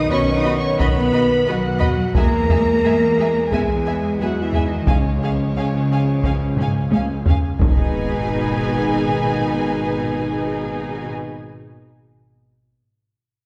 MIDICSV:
0, 0, Header, 1, 10, 480
1, 0, Start_track
1, 0, Key_signature, 5, "minor"
1, 0, Tempo, 681276
1, 1518, Time_signature, 4, 2, 24, 8
1, 9480, End_track
2, 0, Start_track
2, 0, Title_t, "Violin section"
2, 0, Program_c, 0, 48
2, 0, Note_on_c, 0, 87, 96
2, 77, Note_on_c, 0, 85, 74
2, 81, Note_off_c, 0, 87, 0
2, 234, Note_off_c, 0, 85, 0
2, 236, Note_on_c, 0, 87, 76
2, 397, Note_off_c, 0, 87, 0
2, 405, Note_on_c, 0, 85, 70
2, 558, Note_off_c, 0, 85, 0
2, 563, Note_on_c, 0, 83, 75
2, 1030, Note_off_c, 0, 83, 0
2, 1043, Note_on_c, 0, 78, 75
2, 1518, Note_on_c, 0, 82, 86
2, 1520, Note_off_c, 0, 78, 0
2, 2459, Note_off_c, 0, 82, 0
2, 2467, Note_on_c, 0, 80, 61
2, 2951, Note_on_c, 0, 78, 63
2, 2952, Note_off_c, 0, 80, 0
2, 3102, Note_on_c, 0, 76, 58
2, 3111, Note_off_c, 0, 78, 0
2, 3270, Note_off_c, 0, 76, 0
2, 3284, Note_on_c, 0, 75, 54
2, 3435, Note_on_c, 0, 73, 57
2, 3441, Note_off_c, 0, 75, 0
2, 5117, Note_off_c, 0, 73, 0
2, 5351, Note_on_c, 0, 80, 63
2, 7810, Note_off_c, 0, 80, 0
2, 9480, End_track
3, 0, Start_track
3, 0, Title_t, "Violin section"
3, 0, Program_c, 1, 48
3, 74, Note_on_c, 1, 75, 58
3, 74, Note_on_c, 1, 83, 57
3, 130, Note_off_c, 1, 83, 0
3, 131, Note_off_c, 1, 75, 0
3, 308, Note_on_c, 1, 75, 57
3, 310, Note_on_c, 1, 83, 54
3, 364, Note_off_c, 1, 75, 0
3, 366, Note_off_c, 1, 83, 0
3, 562, Note_on_c, 1, 83, 56
3, 565, Note_on_c, 1, 75, 58
3, 618, Note_off_c, 1, 83, 0
3, 622, Note_off_c, 1, 75, 0
3, 803, Note_on_c, 1, 75, 58
3, 805, Note_on_c, 1, 83, 58
3, 859, Note_off_c, 1, 75, 0
3, 862, Note_off_c, 1, 83, 0
3, 1029, Note_on_c, 1, 75, 52
3, 1034, Note_on_c, 1, 83, 51
3, 1085, Note_off_c, 1, 75, 0
3, 1091, Note_off_c, 1, 83, 0
3, 1267, Note_on_c, 1, 75, 59
3, 1267, Note_on_c, 1, 83, 56
3, 1323, Note_off_c, 1, 75, 0
3, 1324, Note_off_c, 1, 83, 0
3, 1525, Note_on_c, 1, 76, 59
3, 1526, Note_on_c, 1, 80, 59
3, 1581, Note_off_c, 1, 76, 0
3, 1582, Note_off_c, 1, 80, 0
3, 1758, Note_on_c, 1, 76, 53
3, 1762, Note_on_c, 1, 80, 50
3, 1814, Note_off_c, 1, 76, 0
3, 1818, Note_off_c, 1, 80, 0
3, 2006, Note_on_c, 1, 76, 51
3, 2006, Note_on_c, 1, 80, 50
3, 2062, Note_off_c, 1, 76, 0
3, 2062, Note_off_c, 1, 80, 0
3, 2251, Note_on_c, 1, 80, 47
3, 2253, Note_on_c, 1, 76, 48
3, 2308, Note_off_c, 1, 80, 0
3, 2309, Note_off_c, 1, 76, 0
3, 2484, Note_on_c, 1, 76, 54
3, 2488, Note_on_c, 1, 80, 50
3, 2540, Note_off_c, 1, 76, 0
3, 2544, Note_off_c, 1, 80, 0
3, 2717, Note_on_c, 1, 80, 44
3, 2725, Note_on_c, 1, 76, 45
3, 2773, Note_off_c, 1, 80, 0
3, 2781, Note_off_c, 1, 76, 0
3, 2968, Note_on_c, 1, 76, 45
3, 2972, Note_on_c, 1, 80, 45
3, 3024, Note_off_c, 1, 76, 0
3, 3028, Note_off_c, 1, 80, 0
3, 3199, Note_on_c, 1, 76, 48
3, 3200, Note_on_c, 1, 80, 49
3, 3256, Note_off_c, 1, 76, 0
3, 3256, Note_off_c, 1, 80, 0
3, 3438, Note_on_c, 1, 80, 50
3, 3441, Note_on_c, 1, 77, 50
3, 3494, Note_off_c, 1, 80, 0
3, 3497, Note_off_c, 1, 77, 0
3, 3688, Note_on_c, 1, 80, 42
3, 3694, Note_on_c, 1, 77, 39
3, 3745, Note_off_c, 1, 80, 0
3, 3750, Note_off_c, 1, 77, 0
3, 3930, Note_on_c, 1, 77, 47
3, 3936, Note_on_c, 1, 80, 43
3, 3987, Note_off_c, 1, 77, 0
3, 3992, Note_off_c, 1, 80, 0
3, 4176, Note_on_c, 1, 80, 40
3, 4183, Note_on_c, 1, 77, 43
3, 4233, Note_off_c, 1, 80, 0
3, 4240, Note_off_c, 1, 77, 0
3, 4407, Note_on_c, 1, 77, 45
3, 4410, Note_on_c, 1, 80, 46
3, 4464, Note_off_c, 1, 77, 0
3, 4466, Note_off_c, 1, 80, 0
3, 4659, Note_on_c, 1, 80, 45
3, 4662, Note_on_c, 1, 77, 42
3, 4715, Note_off_c, 1, 80, 0
3, 4719, Note_off_c, 1, 77, 0
3, 4896, Note_on_c, 1, 77, 42
3, 4896, Note_on_c, 1, 80, 42
3, 4953, Note_off_c, 1, 77, 0
3, 4953, Note_off_c, 1, 80, 0
3, 5130, Note_on_c, 1, 77, 45
3, 5131, Note_on_c, 1, 80, 47
3, 5187, Note_off_c, 1, 77, 0
3, 5188, Note_off_c, 1, 80, 0
3, 5372, Note_on_c, 1, 80, 58
3, 5375, Note_on_c, 1, 71, 59
3, 7821, Note_off_c, 1, 80, 0
3, 7823, Note_off_c, 1, 71, 0
3, 9480, End_track
4, 0, Start_track
4, 0, Title_t, "French horn section"
4, 0, Program_c, 2, 60
4, 0, Note_on_c, 2, 75, 95
4, 64, Note_on_c, 2, 73, 105
4, 78, Note_off_c, 2, 75, 0
4, 221, Note_on_c, 2, 75, 84
4, 231, Note_off_c, 2, 73, 0
4, 386, Note_off_c, 2, 75, 0
4, 406, Note_on_c, 2, 73, 88
4, 559, Note_on_c, 2, 71, 87
4, 562, Note_off_c, 2, 73, 0
4, 1038, Note_off_c, 2, 71, 0
4, 1042, Note_on_c, 2, 66, 84
4, 1515, Note_on_c, 2, 70, 96
4, 1520, Note_off_c, 2, 66, 0
4, 2457, Note_off_c, 2, 70, 0
4, 2471, Note_on_c, 2, 68, 73
4, 2954, Note_off_c, 2, 68, 0
4, 2963, Note_on_c, 2, 66, 77
4, 3118, Note_on_c, 2, 64, 67
4, 3121, Note_off_c, 2, 66, 0
4, 3278, Note_off_c, 2, 64, 0
4, 3282, Note_on_c, 2, 63, 62
4, 3426, Note_on_c, 2, 61, 59
4, 3440, Note_off_c, 2, 63, 0
4, 5113, Note_off_c, 2, 61, 0
4, 5334, Note_on_c, 2, 56, 61
4, 7802, Note_off_c, 2, 56, 0
4, 9480, End_track
5, 0, Start_track
5, 0, Title_t, "Viola section"
5, 0, Program_c, 3, 48
5, 65, Note_on_c, 3, 59, 59
5, 68, Note_on_c, 3, 66, 64
5, 121, Note_off_c, 3, 59, 0
5, 124, Note_off_c, 3, 66, 0
5, 314, Note_on_c, 3, 66, 50
5, 317, Note_on_c, 3, 59, 57
5, 371, Note_off_c, 3, 66, 0
5, 373, Note_off_c, 3, 59, 0
5, 553, Note_on_c, 3, 59, 59
5, 553, Note_on_c, 3, 66, 54
5, 609, Note_off_c, 3, 59, 0
5, 610, Note_off_c, 3, 66, 0
5, 786, Note_on_c, 3, 66, 50
5, 792, Note_on_c, 3, 59, 50
5, 843, Note_off_c, 3, 66, 0
5, 848, Note_off_c, 3, 59, 0
5, 1039, Note_on_c, 3, 59, 59
5, 1042, Note_on_c, 3, 66, 60
5, 1095, Note_off_c, 3, 59, 0
5, 1098, Note_off_c, 3, 66, 0
5, 1271, Note_on_c, 3, 66, 48
5, 1277, Note_on_c, 3, 59, 50
5, 1328, Note_off_c, 3, 66, 0
5, 1334, Note_off_c, 3, 59, 0
5, 1521, Note_on_c, 3, 68, 61
5, 1522, Note_on_c, 3, 56, 63
5, 1577, Note_off_c, 3, 68, 0
5, 1578, Note_off_c, 3, 56, 0
5, 1755, Note_on_c, 3, 68, 54
5, 1758, Note_on_c, 3, 56, 51
5, 1812, Note_off_c, 3, 68, 0
5, 1815, Note_off_c, 3, 56, 0
5, 1995, Note_on_c, 3, 68, 48
5, 1999, Note_on_c, 3, 56, 54
5, 2051, Note_off_c, 3, 68, 0
5, 2056, Note_off_c, 3, 56, 0
5, 2243, Note_on_c, 3, 68, 46
5, 2247, Note_on_c, 3, 56, 51
5, 2299, Note_off_c, 3, 68, 0
5, 2303, Note_off_c, 3, 56, 0
5, 2475, Note_on_c, 3, 59, 46
5, 2479, Note_on_c, 3, 68, 53
5, 2531, Note_off_c, 3, 59, 0
5, 2535, Note_off_c, 3, 68, 0
5, 2720, Note_on_c, 3, 59, 42
5, 2723, Note_on_c, 3, 68, 42
5, 2777, Note_off_c, 3, 59, 0
5, 2779, Note_off_c, 3, 68, 0
5, 2963, Note_on_c, 3, 59, 50
5, 2964, Note_on_c, 3, 68, 46
5, 3019, Note_off_c, 3, 59, 0
5, 3020, Note_off_c, 3, 68, 0
5, 3194, Note_on_c, 3, 68, 44
5, 3197, Note_on_c, 3, 59, 42
5, 3251, Note_off_c, 3, 68, 0
5, 3253, Note_off_c, 3, 59, 0
5, 3438, Note_on_c, 3, 61, 50
5, 3439, Note_on_c, 3, 68, 48
5, 3494, Note_off_c, 3, 61, 0
5, 3495, Note_off_c, 3, 68, 0
5, 3682, Note_on_c, 3, 68, 45
5, 3683, Note_on_c, 3, 61, 41
5, 3738, Note_off_c, 3, 68, 0
5, 3740, Note_off_c, 3, 61, 0
5, 3921, Note_on_c, 3, 61, 42
5, 3922, Note_on_c, 3, 68, 45
5, 3978, Note_off_c, 3, 61, 0
5, 3978, Note_off_c, 3, 68, 0
5, 4155, Note_on_c, 3, 68, 46
5, 4163, Note_on_c, 3, 61, 42
5, 4212, Note_off_c, 3, 68, 0
5, 4219, Note_off_c, 3, 61, 0
5, 4385, Note_on_c, 3, 61, 42
5, 4387, Note_on_c, 3, 68, 46
5, 4442, Note_off_c, 3, 61, 0
5, 4443, Note_off_c, 3, 68, 0
5, 4628, Note_on_c, 3, 68, 40
5, 4630, Note_on_c, 3, 61, 38
5, 4684, Note_off_c, 3, 68, 0
5, 4687, Note_off_c, 3, 61, 0
5, 4862, Note_on_c, 3, 68, 45
5, 4863, Note_on_c, 3, 61, 48
5, 4918, Note_off_c, 3, 68, 0
5, 4920, Note_off_c, 3, 61, 0
5, 5108, Note_on_c, 3, 68, 44
5, 5109, Note_on_c, 3, 61, 41
5, 5164, Note_off_c, 3, 68, 0
5, 5166, Note_off_c, 3, 61, 0
5, 5350, Note_on_c, 3, 63, 60
5, 5353, Note_on_c, 3, 68, 58
5, 7810, Note_off_c, 3, 63, 0
5, 7812, Note_off_c, 3, 68, 0
5, 9480, End_track
6, 0, Start_track
6, 0, Title_t, "Cello section"
6, 0, Program_c, 4, 48
6, 0, Note_on_c, 4, 63, 86
6, 72, Note_off_c, 4, 63, 0
6, 89, Note_on_c, 4, 61, 83
6, 240, Note_off_c, 4, 61, 0
6, 248, Note_on_c, 4, 63, 75
6, 403, Note_off_c, 4, 63, 0
6, 406, Note_on_c, 4, 61, 72
6, 560, Note_on_c, 4, 59, 80
6, 562, Note_off_c, 4, 61, 0
6, 1039, Note_off_c, 4, 59, 0
6, 1048, Note_on_c, 4, 54, 72
6, 1523, Note_off_c, 4, 54, 0
6, 1523, Note_on_c, 4, 58, 91
6, 2462, Note_off_c, 4, 58, 0
6, 2483, Note_on_c, 4, 56, 61
6, 2951, Note_off_c, 4, 56, 0
6, 2958, Note_on_c, 4, 54, 60
6, 3117, Note_on_c, 4, 52, 57
6, 3118, Note_off_c, 4, 54, 0
6, 3274, Note_off_c, 4, 52, 0
6, 3278, Note_on_c, 4, 51, 55
6, 3434, Note_on_c, 4, 49, 51
6, 3435, Note_off_c, 4, 51, 0
6, 5117, Note_off_c, 4, 49, 0
6, 5359, Note_on_c, 4, 47, 61
6, 7814, Note_off_c, 4, 47, 0
6, 9480, End_track
7, 0, Start_track
7, 0, Title_t, "Trombone section"
7, 0, Program_c, 5, 61
7, 0, Note_on_c, 5, 51, 79
7, 0, Note_on_c, 5, 59, 73
7, 1398, Note_off_c, 5, 51, 0
7, 1398, Note_off_c, 5, 59, 0
7, 1518, Note_on_c, 5, 56, 69
7, 1526, Note_on_c, 5, 52, 61
7, 3414, Note_off_c, 5, 52, 0
7, 3427, Note_on_c, 5, 53, 56
7, 5099, Note_off_c, 5, 53, 0
7, 5105, Note_off_c, 5, 56, 0
7, 5344, Note_on_c, 5, 51, 54
7, 5347, Note_on_c, 5, 59, 56
7, 7807, Note_off_c, 5, 51, 0
7, 7809, Note_off_c, 5, 59, 0
7, 9480, End_track
8, 0, Start_track
8, 0, Title_t, "Double bass section"
8, 0, Program_c, 6, 48
8, 80, Note_on_c, 6, 35, 76
8, 502, Note_off_c, 6, 35, 0
8, 564, Note_on_c, 6, 35, 69
8, 984, Note_off_c, 6, 35, 0
8, 1040, Note_on_c, 6, 35, 73
8, 1462, Note_off_c, 6, 35, 0
8, 1512, Note_on_c, 6, 40, 76
8, 1938, Note_off_c, 6, 40, 0
8, 2000, Note_on_c, 6, 40, 62
8, 2422, Note_off_c, 6, 40, 0
8, 2479, Note_on_c, 6, 40, 64
8, 2902, Note_off_c, 6, 40, 0
8, 2959, Note_on_c, 6, 40, 60
8, 3382, Note_off_c, 6, 40, 0
8, 3446, Note_on_c, 6, 37, 56
8, 3865, Note_off_c, 6, 37, 0
8, 3923, Note_on_c, 6, 37, 57
8, 4344, Note_off_c, 6, 37, 0
8, 4399, Note_on_c, 6, 37, 60
8, 4822, Note_off_c, 6, 37, 0
8, 4871, Note_on_c, 6, 37, 54
8, 5298, Note_off_c, 6, 37, 0
8, 5352, Note_on_c, 6, 32, 65
8, 7811, Note_off_c, 6, 32, 0
8, 9480, End_track
9, 0, Start_track
9, 0, Title_t, "Impact"
9, 0, Program_c, 7, 103
9, 5352, Note_on_c, 7, 60, 73
9, 8106, Note_off_c, 7, 60, 0
9, 9480, End_track
10, 0, Start_track
10, 0, Title_t, "Taiko and cinematic ensemble drums"
10, 563, Note_on_c, 9, 41, 82
10, 633, Note_off_c, 9, 41, 0
10, 1274, Note_on_c, 9, 43, 45
10, 1345, Note_off_c, 9, 43, 0
10, 1512, Note_on_c, 9, 41, 94
10, 1583, Note_off_c, 9, 41, 0
10, 1756, Note_on_c, 9, 43, 42
10, 1827, Note_off_c, 9, 43, 0
10, 2477, Note_on_c, 9, 41, 81
10, 2547, Note_off_c, 9, 41, 0
10, 3193, Note_on_c, 9, 43, 43
10, 3264, Note_off_c, 9, 43, 0
10, 3431, Note_on_c, 9, 41, 92
10, 3502, Note_off_c, 9, 41, 0
10, 4392, Note_on_c, 9, 41, 73
10, 4463, Note_off_c, 9, 41, 0
10, 4628, Note_on_c, 9, 45, 73
10, 4699, Note_off_c, 9, 45, 0
10, 4874, Note_on_c, 9, 48, 71
10, 4945, Note_off_c, 9, 48, 0
10, 5113, Note_on_c, 9, 43, 78
10, 5184, Note_off_c, 9, 43, 0
10, 5350, Note_on_c, 9, 41, 92
10, 5420, Note_off_c, 9, 41, 0
10, 9480, End_track
0, 0, End_of_file